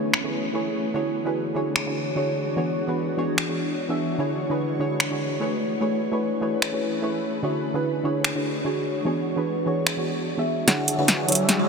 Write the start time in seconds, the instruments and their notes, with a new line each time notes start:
Already playing: ambient pad E3 A3 B3 C#4 G#4, synth pluck A3 E4 G#4 B4 C#5
0.14 finger snap
0.23 synth pluck A3 E4 G#4 B4 C#5
0.53 synth pluck A3 E4 G#4 B4 C#5
0.94 synth pluck D3 D4 E4 F#4 G#4 C#5, ambient pad G#3 D4 F#4 C#5
1.25 synth pluck D3 D4 E4 F#4 G#4 B4
1.54 synth pluck D3 D4 E4 F#4 G#4 C#5
1.76 finger snap
1.85 synth pluck D3 D4 E4 F#4 G#4 C#5
2.15 synth pluck D3 D4 E4 F#4 G#4 C#5
2.56 synth pluck E3 B3 D4 F#4 G#4 C#5, ambient pad D4 C#5
2.87 synth pluck E3 B3 D4 F#4 G#4 B4
3.17 synth pluck E3 B3 D4 F#4 G#4 C#5
3.38 finger snap
3.48 synth pluck E3 B3 D4 F#4 G#4 C#5
3.88 synth pluck E3 B3 D4 F#4 G#4 E5
4.18 synth pluck D3 D4 E4 F#4 G#4 C#5
4.49 synth pluck D3 D4 E4 F#4 G#4 B4
4.79 synth pluck D3 D4 E4 F#4 G#4 C#5
5.00 finger snap
5.10 synth pluck D3 D4 E4 F#4 G#4 C#5
5.40 synth pluck A3 E4 G#4 B4 C#5
5.61 ambient pad A3 C#4 G#4 B4
5.80 synth pluck A3 E4 G#4 B4 C#5
6.11 synth pluck A3 E4 G#4 B4 C#5
6.41 synth pluck A3 E4 G#4 B4 C#5
6.62 finger snap
6.72 synth pluck A3 E4 G#4 B4 C#5
7.02 synth pluck A3 E4 G#4 B4 C#5
7.42 synth pluck D3 D4 E4 F#4 G#4 C#5, ambient pad G#3 D4 F#4 C#5
7.73 synth pluck D3 D4 E4 F#4 G#4 B4
8.03 synth pluck D3 D4 E4 F#4 G#4 C#5
8.24 finger snap
8.34 synth pluck D3 D4 E4 F#4 G#4 C#5
8.64 synth pluck D3 D4 E4 F#4 G#4 C#5
9.04 synth pluck E3 B3 D4 F#4 G#4 C#5, ambient pad E3
9.36 synth pluck E3 B3 D4 F#4 G#4 B4
9.65 synth pluck E3 B3 D4 F#4 G#4 C#5
9.87 finger snap
9.96 synth pluck E3 B3 D4 F#4 G#4 C#5
10.37 synth pluck E3 B3 D4 F#4 G#4 E5
10.67 synth pluck D3 D4 E4 F#4 G#4 C#5, ambient pad E3 G#3 D4 F#4 C#5, supersaw synth D4 F#4 G#4 C#5 E5, kalimba F#5, snare, closed hi-hat, riser
10.88 supersaw synth D4 F#4 G#4 C#5 E5, closed hi-hat
10.98 synth pluck D3 D4 E4 F#4 G#4 B4, supersaw synth D4 F#4 G#4 C#5 F#5, kalimba E5
11.08 snare, closed hi-hat
11.27 synth pluck D3 D4 E4 F#4 G#4 C#5, supersaw synth D4 F#4 G#4 C#5 E5, closed hi-hat
11.32 closed hi-hat
11.35 closed hi-hat
11.49 snare, closed hi-hat
11.59 synth pluck D3 D4 E4 F#4 G#4 C#5, kalimba C#5